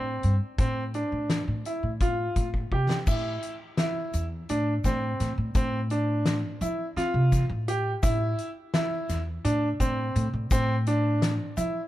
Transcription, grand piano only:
0.00 0.33 C4 medium
0.59 0.82 C4 medium
0.95 1.39 D4 medium
1.66 1.88 E4 medium
2.01 2.46 F4 medium
2.72 2.95 G4 medium
3.08 3.52 E4 medium
3.79 4.24 E4 medium
4.50 4.72 D4 medium
4.85 5.30 C4 medium
5.56 5.78 C4 medium
5.91 6.36 D4 medium
6.62 6.84 E4 medium
6.97 7.42 F4 medium
7.68 7.91 G4 medium
8.03 8.48 E4 medium
8.74 9.19 E4 medium
9.45 9.67 D4 medium
9.80 10.25 C4 medium
10.52 10.74 C4 medium
10.87 11.32 D4 medium
11.57 11.79 E4 medium

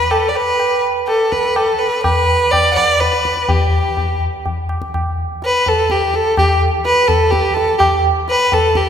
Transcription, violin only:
0.00 0.12 B4 loud
0.11 0.30 A4 medium
0.29 0.38 D5 medium
0.36 0.84 B4 medium
1.07 1.33 A4 medium
1.32 1.58 B4 medium
1.56 1.80 A4 medium
1.79 2.02 B4 medium
2.03 2.53 B4 medium
2.51 2.70 D5 medium
2.72 3.01 D5 medium
2.72 2.77 F#5 medium
3.00 3.51 B4 medium
3.49 4.22 G4 medium
5.45 5.70 B4 medium
5.68 5.93 A4 medium
5.91 6.16 G4 medium
6.15 6.38 A4 medium
6.38 6.60 G4 medium
6.86 7.09 B4 medium
7.08 7.32 A4 medium
7.30 7.55 G4 medium
7.54 7.77 A4 medium
7.78 8.01 G4 medium
8.30 8.55 B4 medium
8.53 8.78 A4 medium
8.77 8.89 G4 medium

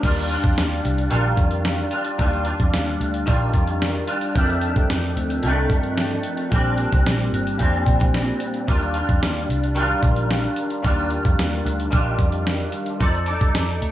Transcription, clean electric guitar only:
0.03 0.30 D#3 medium
0.03 0.31 G3 medium
0.03 0.30 D4 medium
0.03 0.28 F4 medium
0.30 1.11 G3 soft
0.30 1.12 D4 soft
0.30 1.12 F4 medium
1.10 1.94 D#3 medium
1.10 1.94 G3 medium
1.10 1.93 D4 medium
1.10 1.91 F4 medium
1.91 2.18 G3 soft
1.91 2.18 D4 soft
1.91 2.19 F4 soft
2.18 2.46 D#3 medium
2.18 2.46 G3 medium
2.18 2.46 D4 medium
2.18 2.44 F4 loud
2.45 3.27 G3 soft
2.45 3.27 D4 soft
2.45 3.28 F4 medium
3.26 4.10 D#3 medium
3.26 4.10 G3 medium
3.26 4.09 D4 medium
3.26 4.07 F4 loud
4.07 4.36 G3 soft
4.07 4.36 D4 soft
4.07 4.35 F4 soft
4.35 5.41 F2 medium
4.35 5.43 D#3 medium
4.35 5.45 A3 medium
4.40 5.48 D4 medium
5.42 6.50 F2 medium
5.42 6.52 D#3 medium
5.42 6.53 A3 medium
5.48 6.55 D4 medium
6.50 7.57 A#2 medium
6.50 7.59 G3 loud
6.50 7.60 C4 medium
6.55 7.63 D4 loud
7.58 8.67 A#2 medium
7.58 8.68 G3 medium
7.58 8.69 C4 medium
7.63 8.69 D4 medium
8.68 8.95 D#3 medium
8.68 8.95 G3 medium
8.68 8.95 D4 medium
8.68 8.93 F4 medium
8.94 9.77 G3 soft
8.94 9.78 D4 medium
8.94 9.78 F4 soft
9.75 10.82 D#3 medium
9.75 10.84 G3 medium
9.79 10.86 D4 medium
9.79 10.88 F4 loud
10.83 11.90 D#3 medium
10.83 11.93 G3 medium
10.83 11.94 D4 medium
10.88 11.96 F4 loud
11.91 12.99 D#3 medium
11.91 13.03 G3 medium
11.91 13.00 D4 loud
11.96 13.01 F4 loud
13.00 13.27 F3 medium
13.00 13.28 D#4 medium
13.00 13.27 A4 medium
13.00 13.25 D5 medium
13.26 13.91 D#4 soft
13.26 13.91 A4 soft
13.26 13.91 D5 soft

